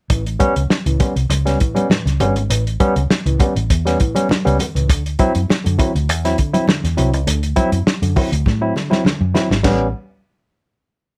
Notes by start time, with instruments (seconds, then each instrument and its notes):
0.10 fingered electric bass A1, tine electric piano A2 E3, kick, closed hi-hat, muted conga
0.27 closed hi-hat
0.39 tine electric piano G3 B3 C#4, kick, closed hi-hat, muted conga, high conga
0.56 fingered electric bass C#2, tine electric piano B3 C#4, closed hi-hat
0.70 tine electric piano B3 C#4, snare
0.86 fingered electric bass C#2, tine electric piano A2 E3, closed hi-hat
0.99 tine electric piano G3 B3 C#4, kick, closed hi-hat, low conga
1.16 fingered electric bass C2, closed hi-hat
1.30 fingered electric bass C#2, closed hi-hat, muted conga
1.45 tine electric piano G3 B3 C#4, snare, closed hi-hat
1.59 tine electric piano A2 E3, kick, closed hi-hat
1.75 tine electric piano G3 B3 C#4, closed hi-hat, high conga
1.90 tine electric piano A2 E3, snare, high conga
2.06 fingered electric bass C#2, snare, closed hi-hat
2.20 fingered electric bass G1, tine electric piano G3 B3 C#4, closed hi-hat, muted conga, low conga
2.36 fingered electric bass G#1, closed hi-hat
2.50 fingered electric bass A1, tine electric piano A2 E3, closed hi-hat
2.67 closed hi-hat
2.80 tine electric piano G3 B3 C#4, kick, closed hi-hat, muted conga, high conga
2.96 fingered electric bass C#2, tine electric piano B3 C#4, closed hi-hat
3.10 tine electric piano B3 C#4, muted fingered electric bass stroke, snare, muted conga
3.26 fingered electric bass C#2, tine electric piano A2 E3, closed hi-hat
3.40 tine electric piano G3 B3 C#4, kick, closed hi-hat, muted conga, low conga
3.56 fingered electric bass A1, closed hi-hat
3.70 fingered electric bass E2, kick, closed hi-hat
3.86 tine electric piano G3 B3 C#4, snare, closed hi-hat
3.99 tine electric piano A2 E3, kick, closed hi-hat
4.15 tine electric piano G3 B3 C#4, closed hi-hat, high conga
4.29 muted fingered electric bass stroke, snare, high conga
4.45 fingered electric bass C#2, tine electric piano G3 B3 C#4, closed hi-hat
4.59 closed hi-hat, muted conga, low conga
4.75 fingered electric bass C#2, tine electric piano A2 E3, closed hi-hat
4.89 fingered electric bass D2, tine electric piano D3, kick, closed hi-hat
5.06 closed hi-hat
5.19 tine electric piano F#3 C4 E4, kick, closed hi-hat, high conga
5.35 fingered electric bass F#2, tine electric piano C4 E4, closed hi-hat
5.48 tine electric piano C4 E4, muted fingered electric bass stroke, snare, muted conga
5.64 fingered electric bass F#2, tine electric piano D3, closed hi-hat
5.78 tine electric piano F#3 C4 E4, kick, closed hi-hat, low conga
5.95 fingered electric bass D2, closed hi-hat
6.09 fingered electric bass E2, closed hi-hat
6.25 tine electric piano F#3 C4 E4, snare, closed hi-hat
6.38 tine electric piano D3, kick, closed hi-hat
6.53 tine electric piano F#3 C4 E4, closed hi-hat, high conga
6.68 tine electric piano D3, snare, high conga
6.84 fingered electric bass E2, snare, closed hi-hat
6.97 fingered electric bass C2, tine electric piano F#3 C4 E4, closed hi-hat, low conga
7.13 fingered electric bass C#2, tine electric piano C4 E4, closed hi-hat
7.27 fingered electric bass D2, tine electric piano D3, closed hi-hat
7.43 closed hi-hat
7.56 tine electric piano F#3 C4 E4, kick, closed hi-hat, high conga
7.72 fingered electric bass F#2, closed hi-hat
7.86 tine electric piano C4 E4, muted fingered electric bass stroke, snare
8.02 fingered electric bass F#2, tine electric piano D3, closed hi-hat
8.16 tine electric piano F#3 C4 E4, kick, open hi-hat, muted conga, low conga
8.32 fingered electric bass D2, closed hi-hat
8.46 fingered electric bass A2, kick, snare, muted conga
8.61 tine electric piano F#3 C4 E4
8.76 tine electric piano D3, snare, muted conga
8.90 tine electric piano F#3 C4 E4, snare, high conga
9.04 tine electric piano D3, muted fingered electric bass stroke, snare, high conga
9.21 fingered electric bass F#2
9.34 tine electric piano F#3 C4 E4, snare, muted conga, low conga
9.50 fingered electric bass G#1, tine electric piano C4 E4, snare
9.63 fingered electric bass A1, tine electric piano G3 B3 C#4, kick, snare, crash, high conga